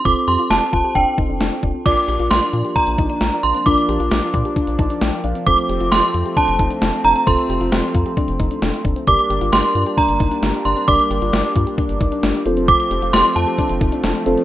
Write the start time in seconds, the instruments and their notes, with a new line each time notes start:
0.05 analog synth bass F1, synth keys C4 F4 A4 C5, synth pluck C4, synth bell D6, kick
0.28 analog synth bass F2, synth pluck G4, synth bell C6
0.39 synth pluck F4
0.50 analog synth bass F1, synth pluck G4, synth bell A5, snare
0.73 analog synth bass F1, synth pluck F4, synth bell A5, kick
0.84 synth pluck G4
0.95 analog synth bass F1, synth pluck D4, synth bell G5, kick
1.18 analog synth bass F1, synth pluck D#4, kick
1.29 analog synth bass F1, synth pluck D4
1.40 analog synth bass F1, synth pluck D4, snare
1.63 analog synth bass F1, synth pluck D4, kick
1.74 synth pluck C4
1.86 analog synth bass A#1, analog synth pad F3 A#3 D4, synth pluck D4, synth keys D4 F4 A#4 D5, synth bell D6, kick, closed hi-hat, crash
1.97 closed hi-hat
2.08 analog synth bass A#1, synth pluck G4, closed hi-hat
2.19 analog synth bass A#1, synth pluck F4, closed hi-hat
2.31 analog synth bass A#1, synth pluck G4, synth bell C6, snare, closed hi-hat
2.42 closed hi-hat
2.53 analog synth bass A#2, synth pluck F4, closed hi-hat
2.65 synth pluck G4, closed hi-hat
2.76 synth pluck D4, synth bell A#5, kick, closed hi-hat
2.87 analog synth bass A#1, closed hi-hat
2.98 analog synth bass A#1, synth pluck D#4, kick, closed hi-hat
3.10 synth pluck D4, closed hi-hat
3.21 analog synth bass A#1, synth pluck D4, snare, closed hi-hat
3.32 closed hi-hat
3.43 analog synth bass A#1, synth pluck D4, synth bell C6, closed hi-hat
3.55 synth pluck C4, closed hi-hat
3.66 analog synth bass A#1, synth keys D4 F4 A#4 D5, synth pluck D4, synth bell D6, kick, closed hi-hat
3.78 closed hi-hat
3.89 analog synth bass A#1, synth pluck G4, closed hi-hat
4.00 analog synth bass A#1, synth pluck F4, closed hi-hat
4.11 analog synth bass A#1, synth pluck G4, snare, closed hi-hat
4.22 closed hi-hat
4.34 analog synth bass A#2, synth pluck F4, kick, closed hi-hat
4.45 synth pluck G4, closed hi-hat
4.56 synth pluck D4, kick, closed hi-hat
4.67 analog synth bass A#1, closed hi-hat
4.79 analog synth bass A#1, synth pluck D#4, synth keys A5, kick, closed hi-hat
4.90 synth pluck D4, closed hi-hat
5.01 analog synth bass A#1, synth pluck D4, synth keys G5, snare, closed hi-hat
5.13 closed hi-hat
5.24 analog synth bass A#1, synth pluck D4, synth keys F5, closed hi-hat
5.35 synth pluck C4, closed hi-hat
5.46 analog synth bass F1, analog synth pad A3 C4, synth keys C4 F4 A4 C5, synth pluck C4, synth bell D6, kick, closed hi-hat
5.58 closed hi-hat
5.69 analog synth bass F1, synth pluck G4, closed hi-hat
5.80 analog synth bass F1, synth pluck F4, closed hi-hat
5.92 analog synth bass F1, synth pluck G4, synth bell C6, snare, closed hi-hat
6.03 closed hi-hat
6.14 analog synth bass F2, synth pluck F4, closed hi-hat
6.26 synth pluck G4, closed hi-hat
6.37 synth pluck D4, synth bell A5, kick, closed hi-hat
6.48 analog synth bass F1, closed hi-hat
6.59 analog synth bass F1, synth pluck D#4, kick, closed hi-hat
6.71 synth pluck D4, closed hi-hat
6.82 analog synth bass F1, synth pluck D4, snare, closed hi-hat
6.93 closed hi-hat
7.04 analog synth bass F1, synth pluck D4, synth bell A#5, closed hi-hat
7.16 synth pluck C4, closed hi-hat
7.27 analog synth bass F1, synth pluck C4, synth keys C4 F4 A4 C5, synth bell C6, kick, closed hi-hat
7.39 closed hi-hat
7.49 analog synth bass F1, synth pluck G4, closed hi-hat
7.61 analog synth bass F1, synth pluck F4, closed hi-hat
7.72 analog synth bass F1, synth pluck G4, snare, closed hi-hat
7.83 closed hi-hat
7.95 analog synth bass F2, synth pluck F4, kick, closed hi-hat
8.06 synth pluck G4, closed hi-hat
8.17 synth pluck D4, kick, closed hi-hat
8.28 analog synth bass F1, closed hi-hat
8.40 analog synth bass F1, synth pluck D#4, kick, closed hi-hat
8.51 synth pluck D4, closed hi-hat
8.62 analog synth bass F1, synth pluck D4, snare, closed hi-hat
8.74 closed hi-hat
8.85 analog synth bass F1, synth pluck D4, kick, closed hi-hat
8.96 synth pluck C4, closed hi-hat
9.07 analog synth bass G1, analog synth pad G3 A#3 D4, synth pluck D4, synth keys D4 G4 A#4 D5, synth bell D6, kick, closed hi-hat
9.19 closed hi-hat
9.30 analog synth bass G1, synth pluck G4, closed hi-hat
9.41 analog synth bass G1, synth pluck F4, closed hi-hat
9.52 analog synth bass G1, synth pluck G4, synth bell C6, snare, closed hi-hat
9.64 closed hi-hat
9.75 analog synth bass G2, synth pluck F4, closed hi-hat
9.86 synth pluck G4, closed hi-hat
9.98 synth pluck D4, synth bell A#5, kick, closed hi-hat
10.09 analog synth bass G1, closed hi-hat
10.20 analog synth bass G1, synth pluck D#4, kick, closed hi-hat
10.31 synth pluck D4, closed hi-hat
10.43 analog synth bass G1, synth pluck D4, snare, closed hi-hat
10.54 closed hi-hat
10.65 analog synth bass G1, synth pluck D4, synth bell C6, closed hi-hat
10.77 synth pluck C4, closed hi-hat
10.88 analog synth bass G1, synth pluck D4, synth keys D4 G4 A#4 D5, synth bell D6, kick, closed hi-hat
11.00 closed hi-hat
11.10 analog synth bass G1, synth pluck G4, closed hi-hat
11.22 analog synth bass G1, synth pluck F4, closed hi-hat
11.33 analog synth bass G1, synth pluck G4, snare, closed hi-hat
11.44 closed hi-hat
11.55 analog synth bass G2, synth pluck F4, kick, closed hi-hat
11.67 synth pluck G4, closed hi-hat
11.78 synth pluck D4, kick, closed hi-hat
11.89 analog synth bass G1, closed hi-hat
12.01 analog synth bass G1, synth pluck D#4, kick, closed hi-hat
12.12 synth pluck D4, closed hi-hat
12.23 analog synth bass G1, synth pluck D4, snare, closed hi-hat
12.35 closed hi-hat
12.46 analog synth bass F1, analog synth pad F3 A3 C4, synth keys C4 F4 A4 C5, synth pluck D4, closed hi-hat
12.57 synth pluck C4, closed hi-hat
12.68 synth pluck C4, synth bell D6, kick, closed hi-hat
12.80 closed hi-hat
12.91 analog synth bass F1, synth pluck G4, closed hi-hat
13.02 analog synth bass F1, synth pluck F4, closed hi-hat
13.13 analog synth bass F1, synth pluck G4, synth bell C6, snare, closed hi-hat
13.25 closed hi-hat
13.36 analog synth bass F2, synth pluck F4, synth bell A5, closed hi-hat
13.47 synth pluck G4, closed hi-hat
13.58 synth pluck D4, kick, closed hi-hat
13.69 analog synth bass F1, closed hi-hat
13.81 analog synth bass F1, synth pluck D#4, kick, closed hi-hat
13.92 synth pluck D4, closed hi-hat
14.04 analog synth bass F1, synth pluck D4, snare, closed hi-hat
14.15 closed hi-hat
14.26 analog synth bass F1, synth keys C4 F4 A4 C5, synth pluck D4, analog synth pad D4, closed hi-hat
14.37 synth pluck C4, closed hi-hat